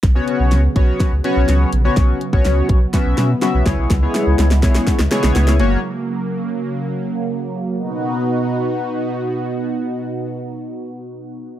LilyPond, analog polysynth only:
\new Staff \with { instrumentName = "Analog polysynth" } { \time 4/4 \key b \major \tempo 4 = 124 r16 <b cis' fis' cis''>4 r16 <b cis' fis' cis''>8. r16 <b cis' fis' cis''>4 r16 <b cis' fis' cis''>16~ | <b cis' fis' cis''>8 r16 <b cis' fis' cis''>4 r16 <b cis' fis' e''>8. r16 <b cis' fis' e''>8 <b e' gis' cis''>8 | r16 <b e' gis' cis''>4 r16 <b e' gis' cis''>8. r16 <b e' gis' cis''>4 <ais cis' fis' cis''>8 | r1 |
r1 | r1 | }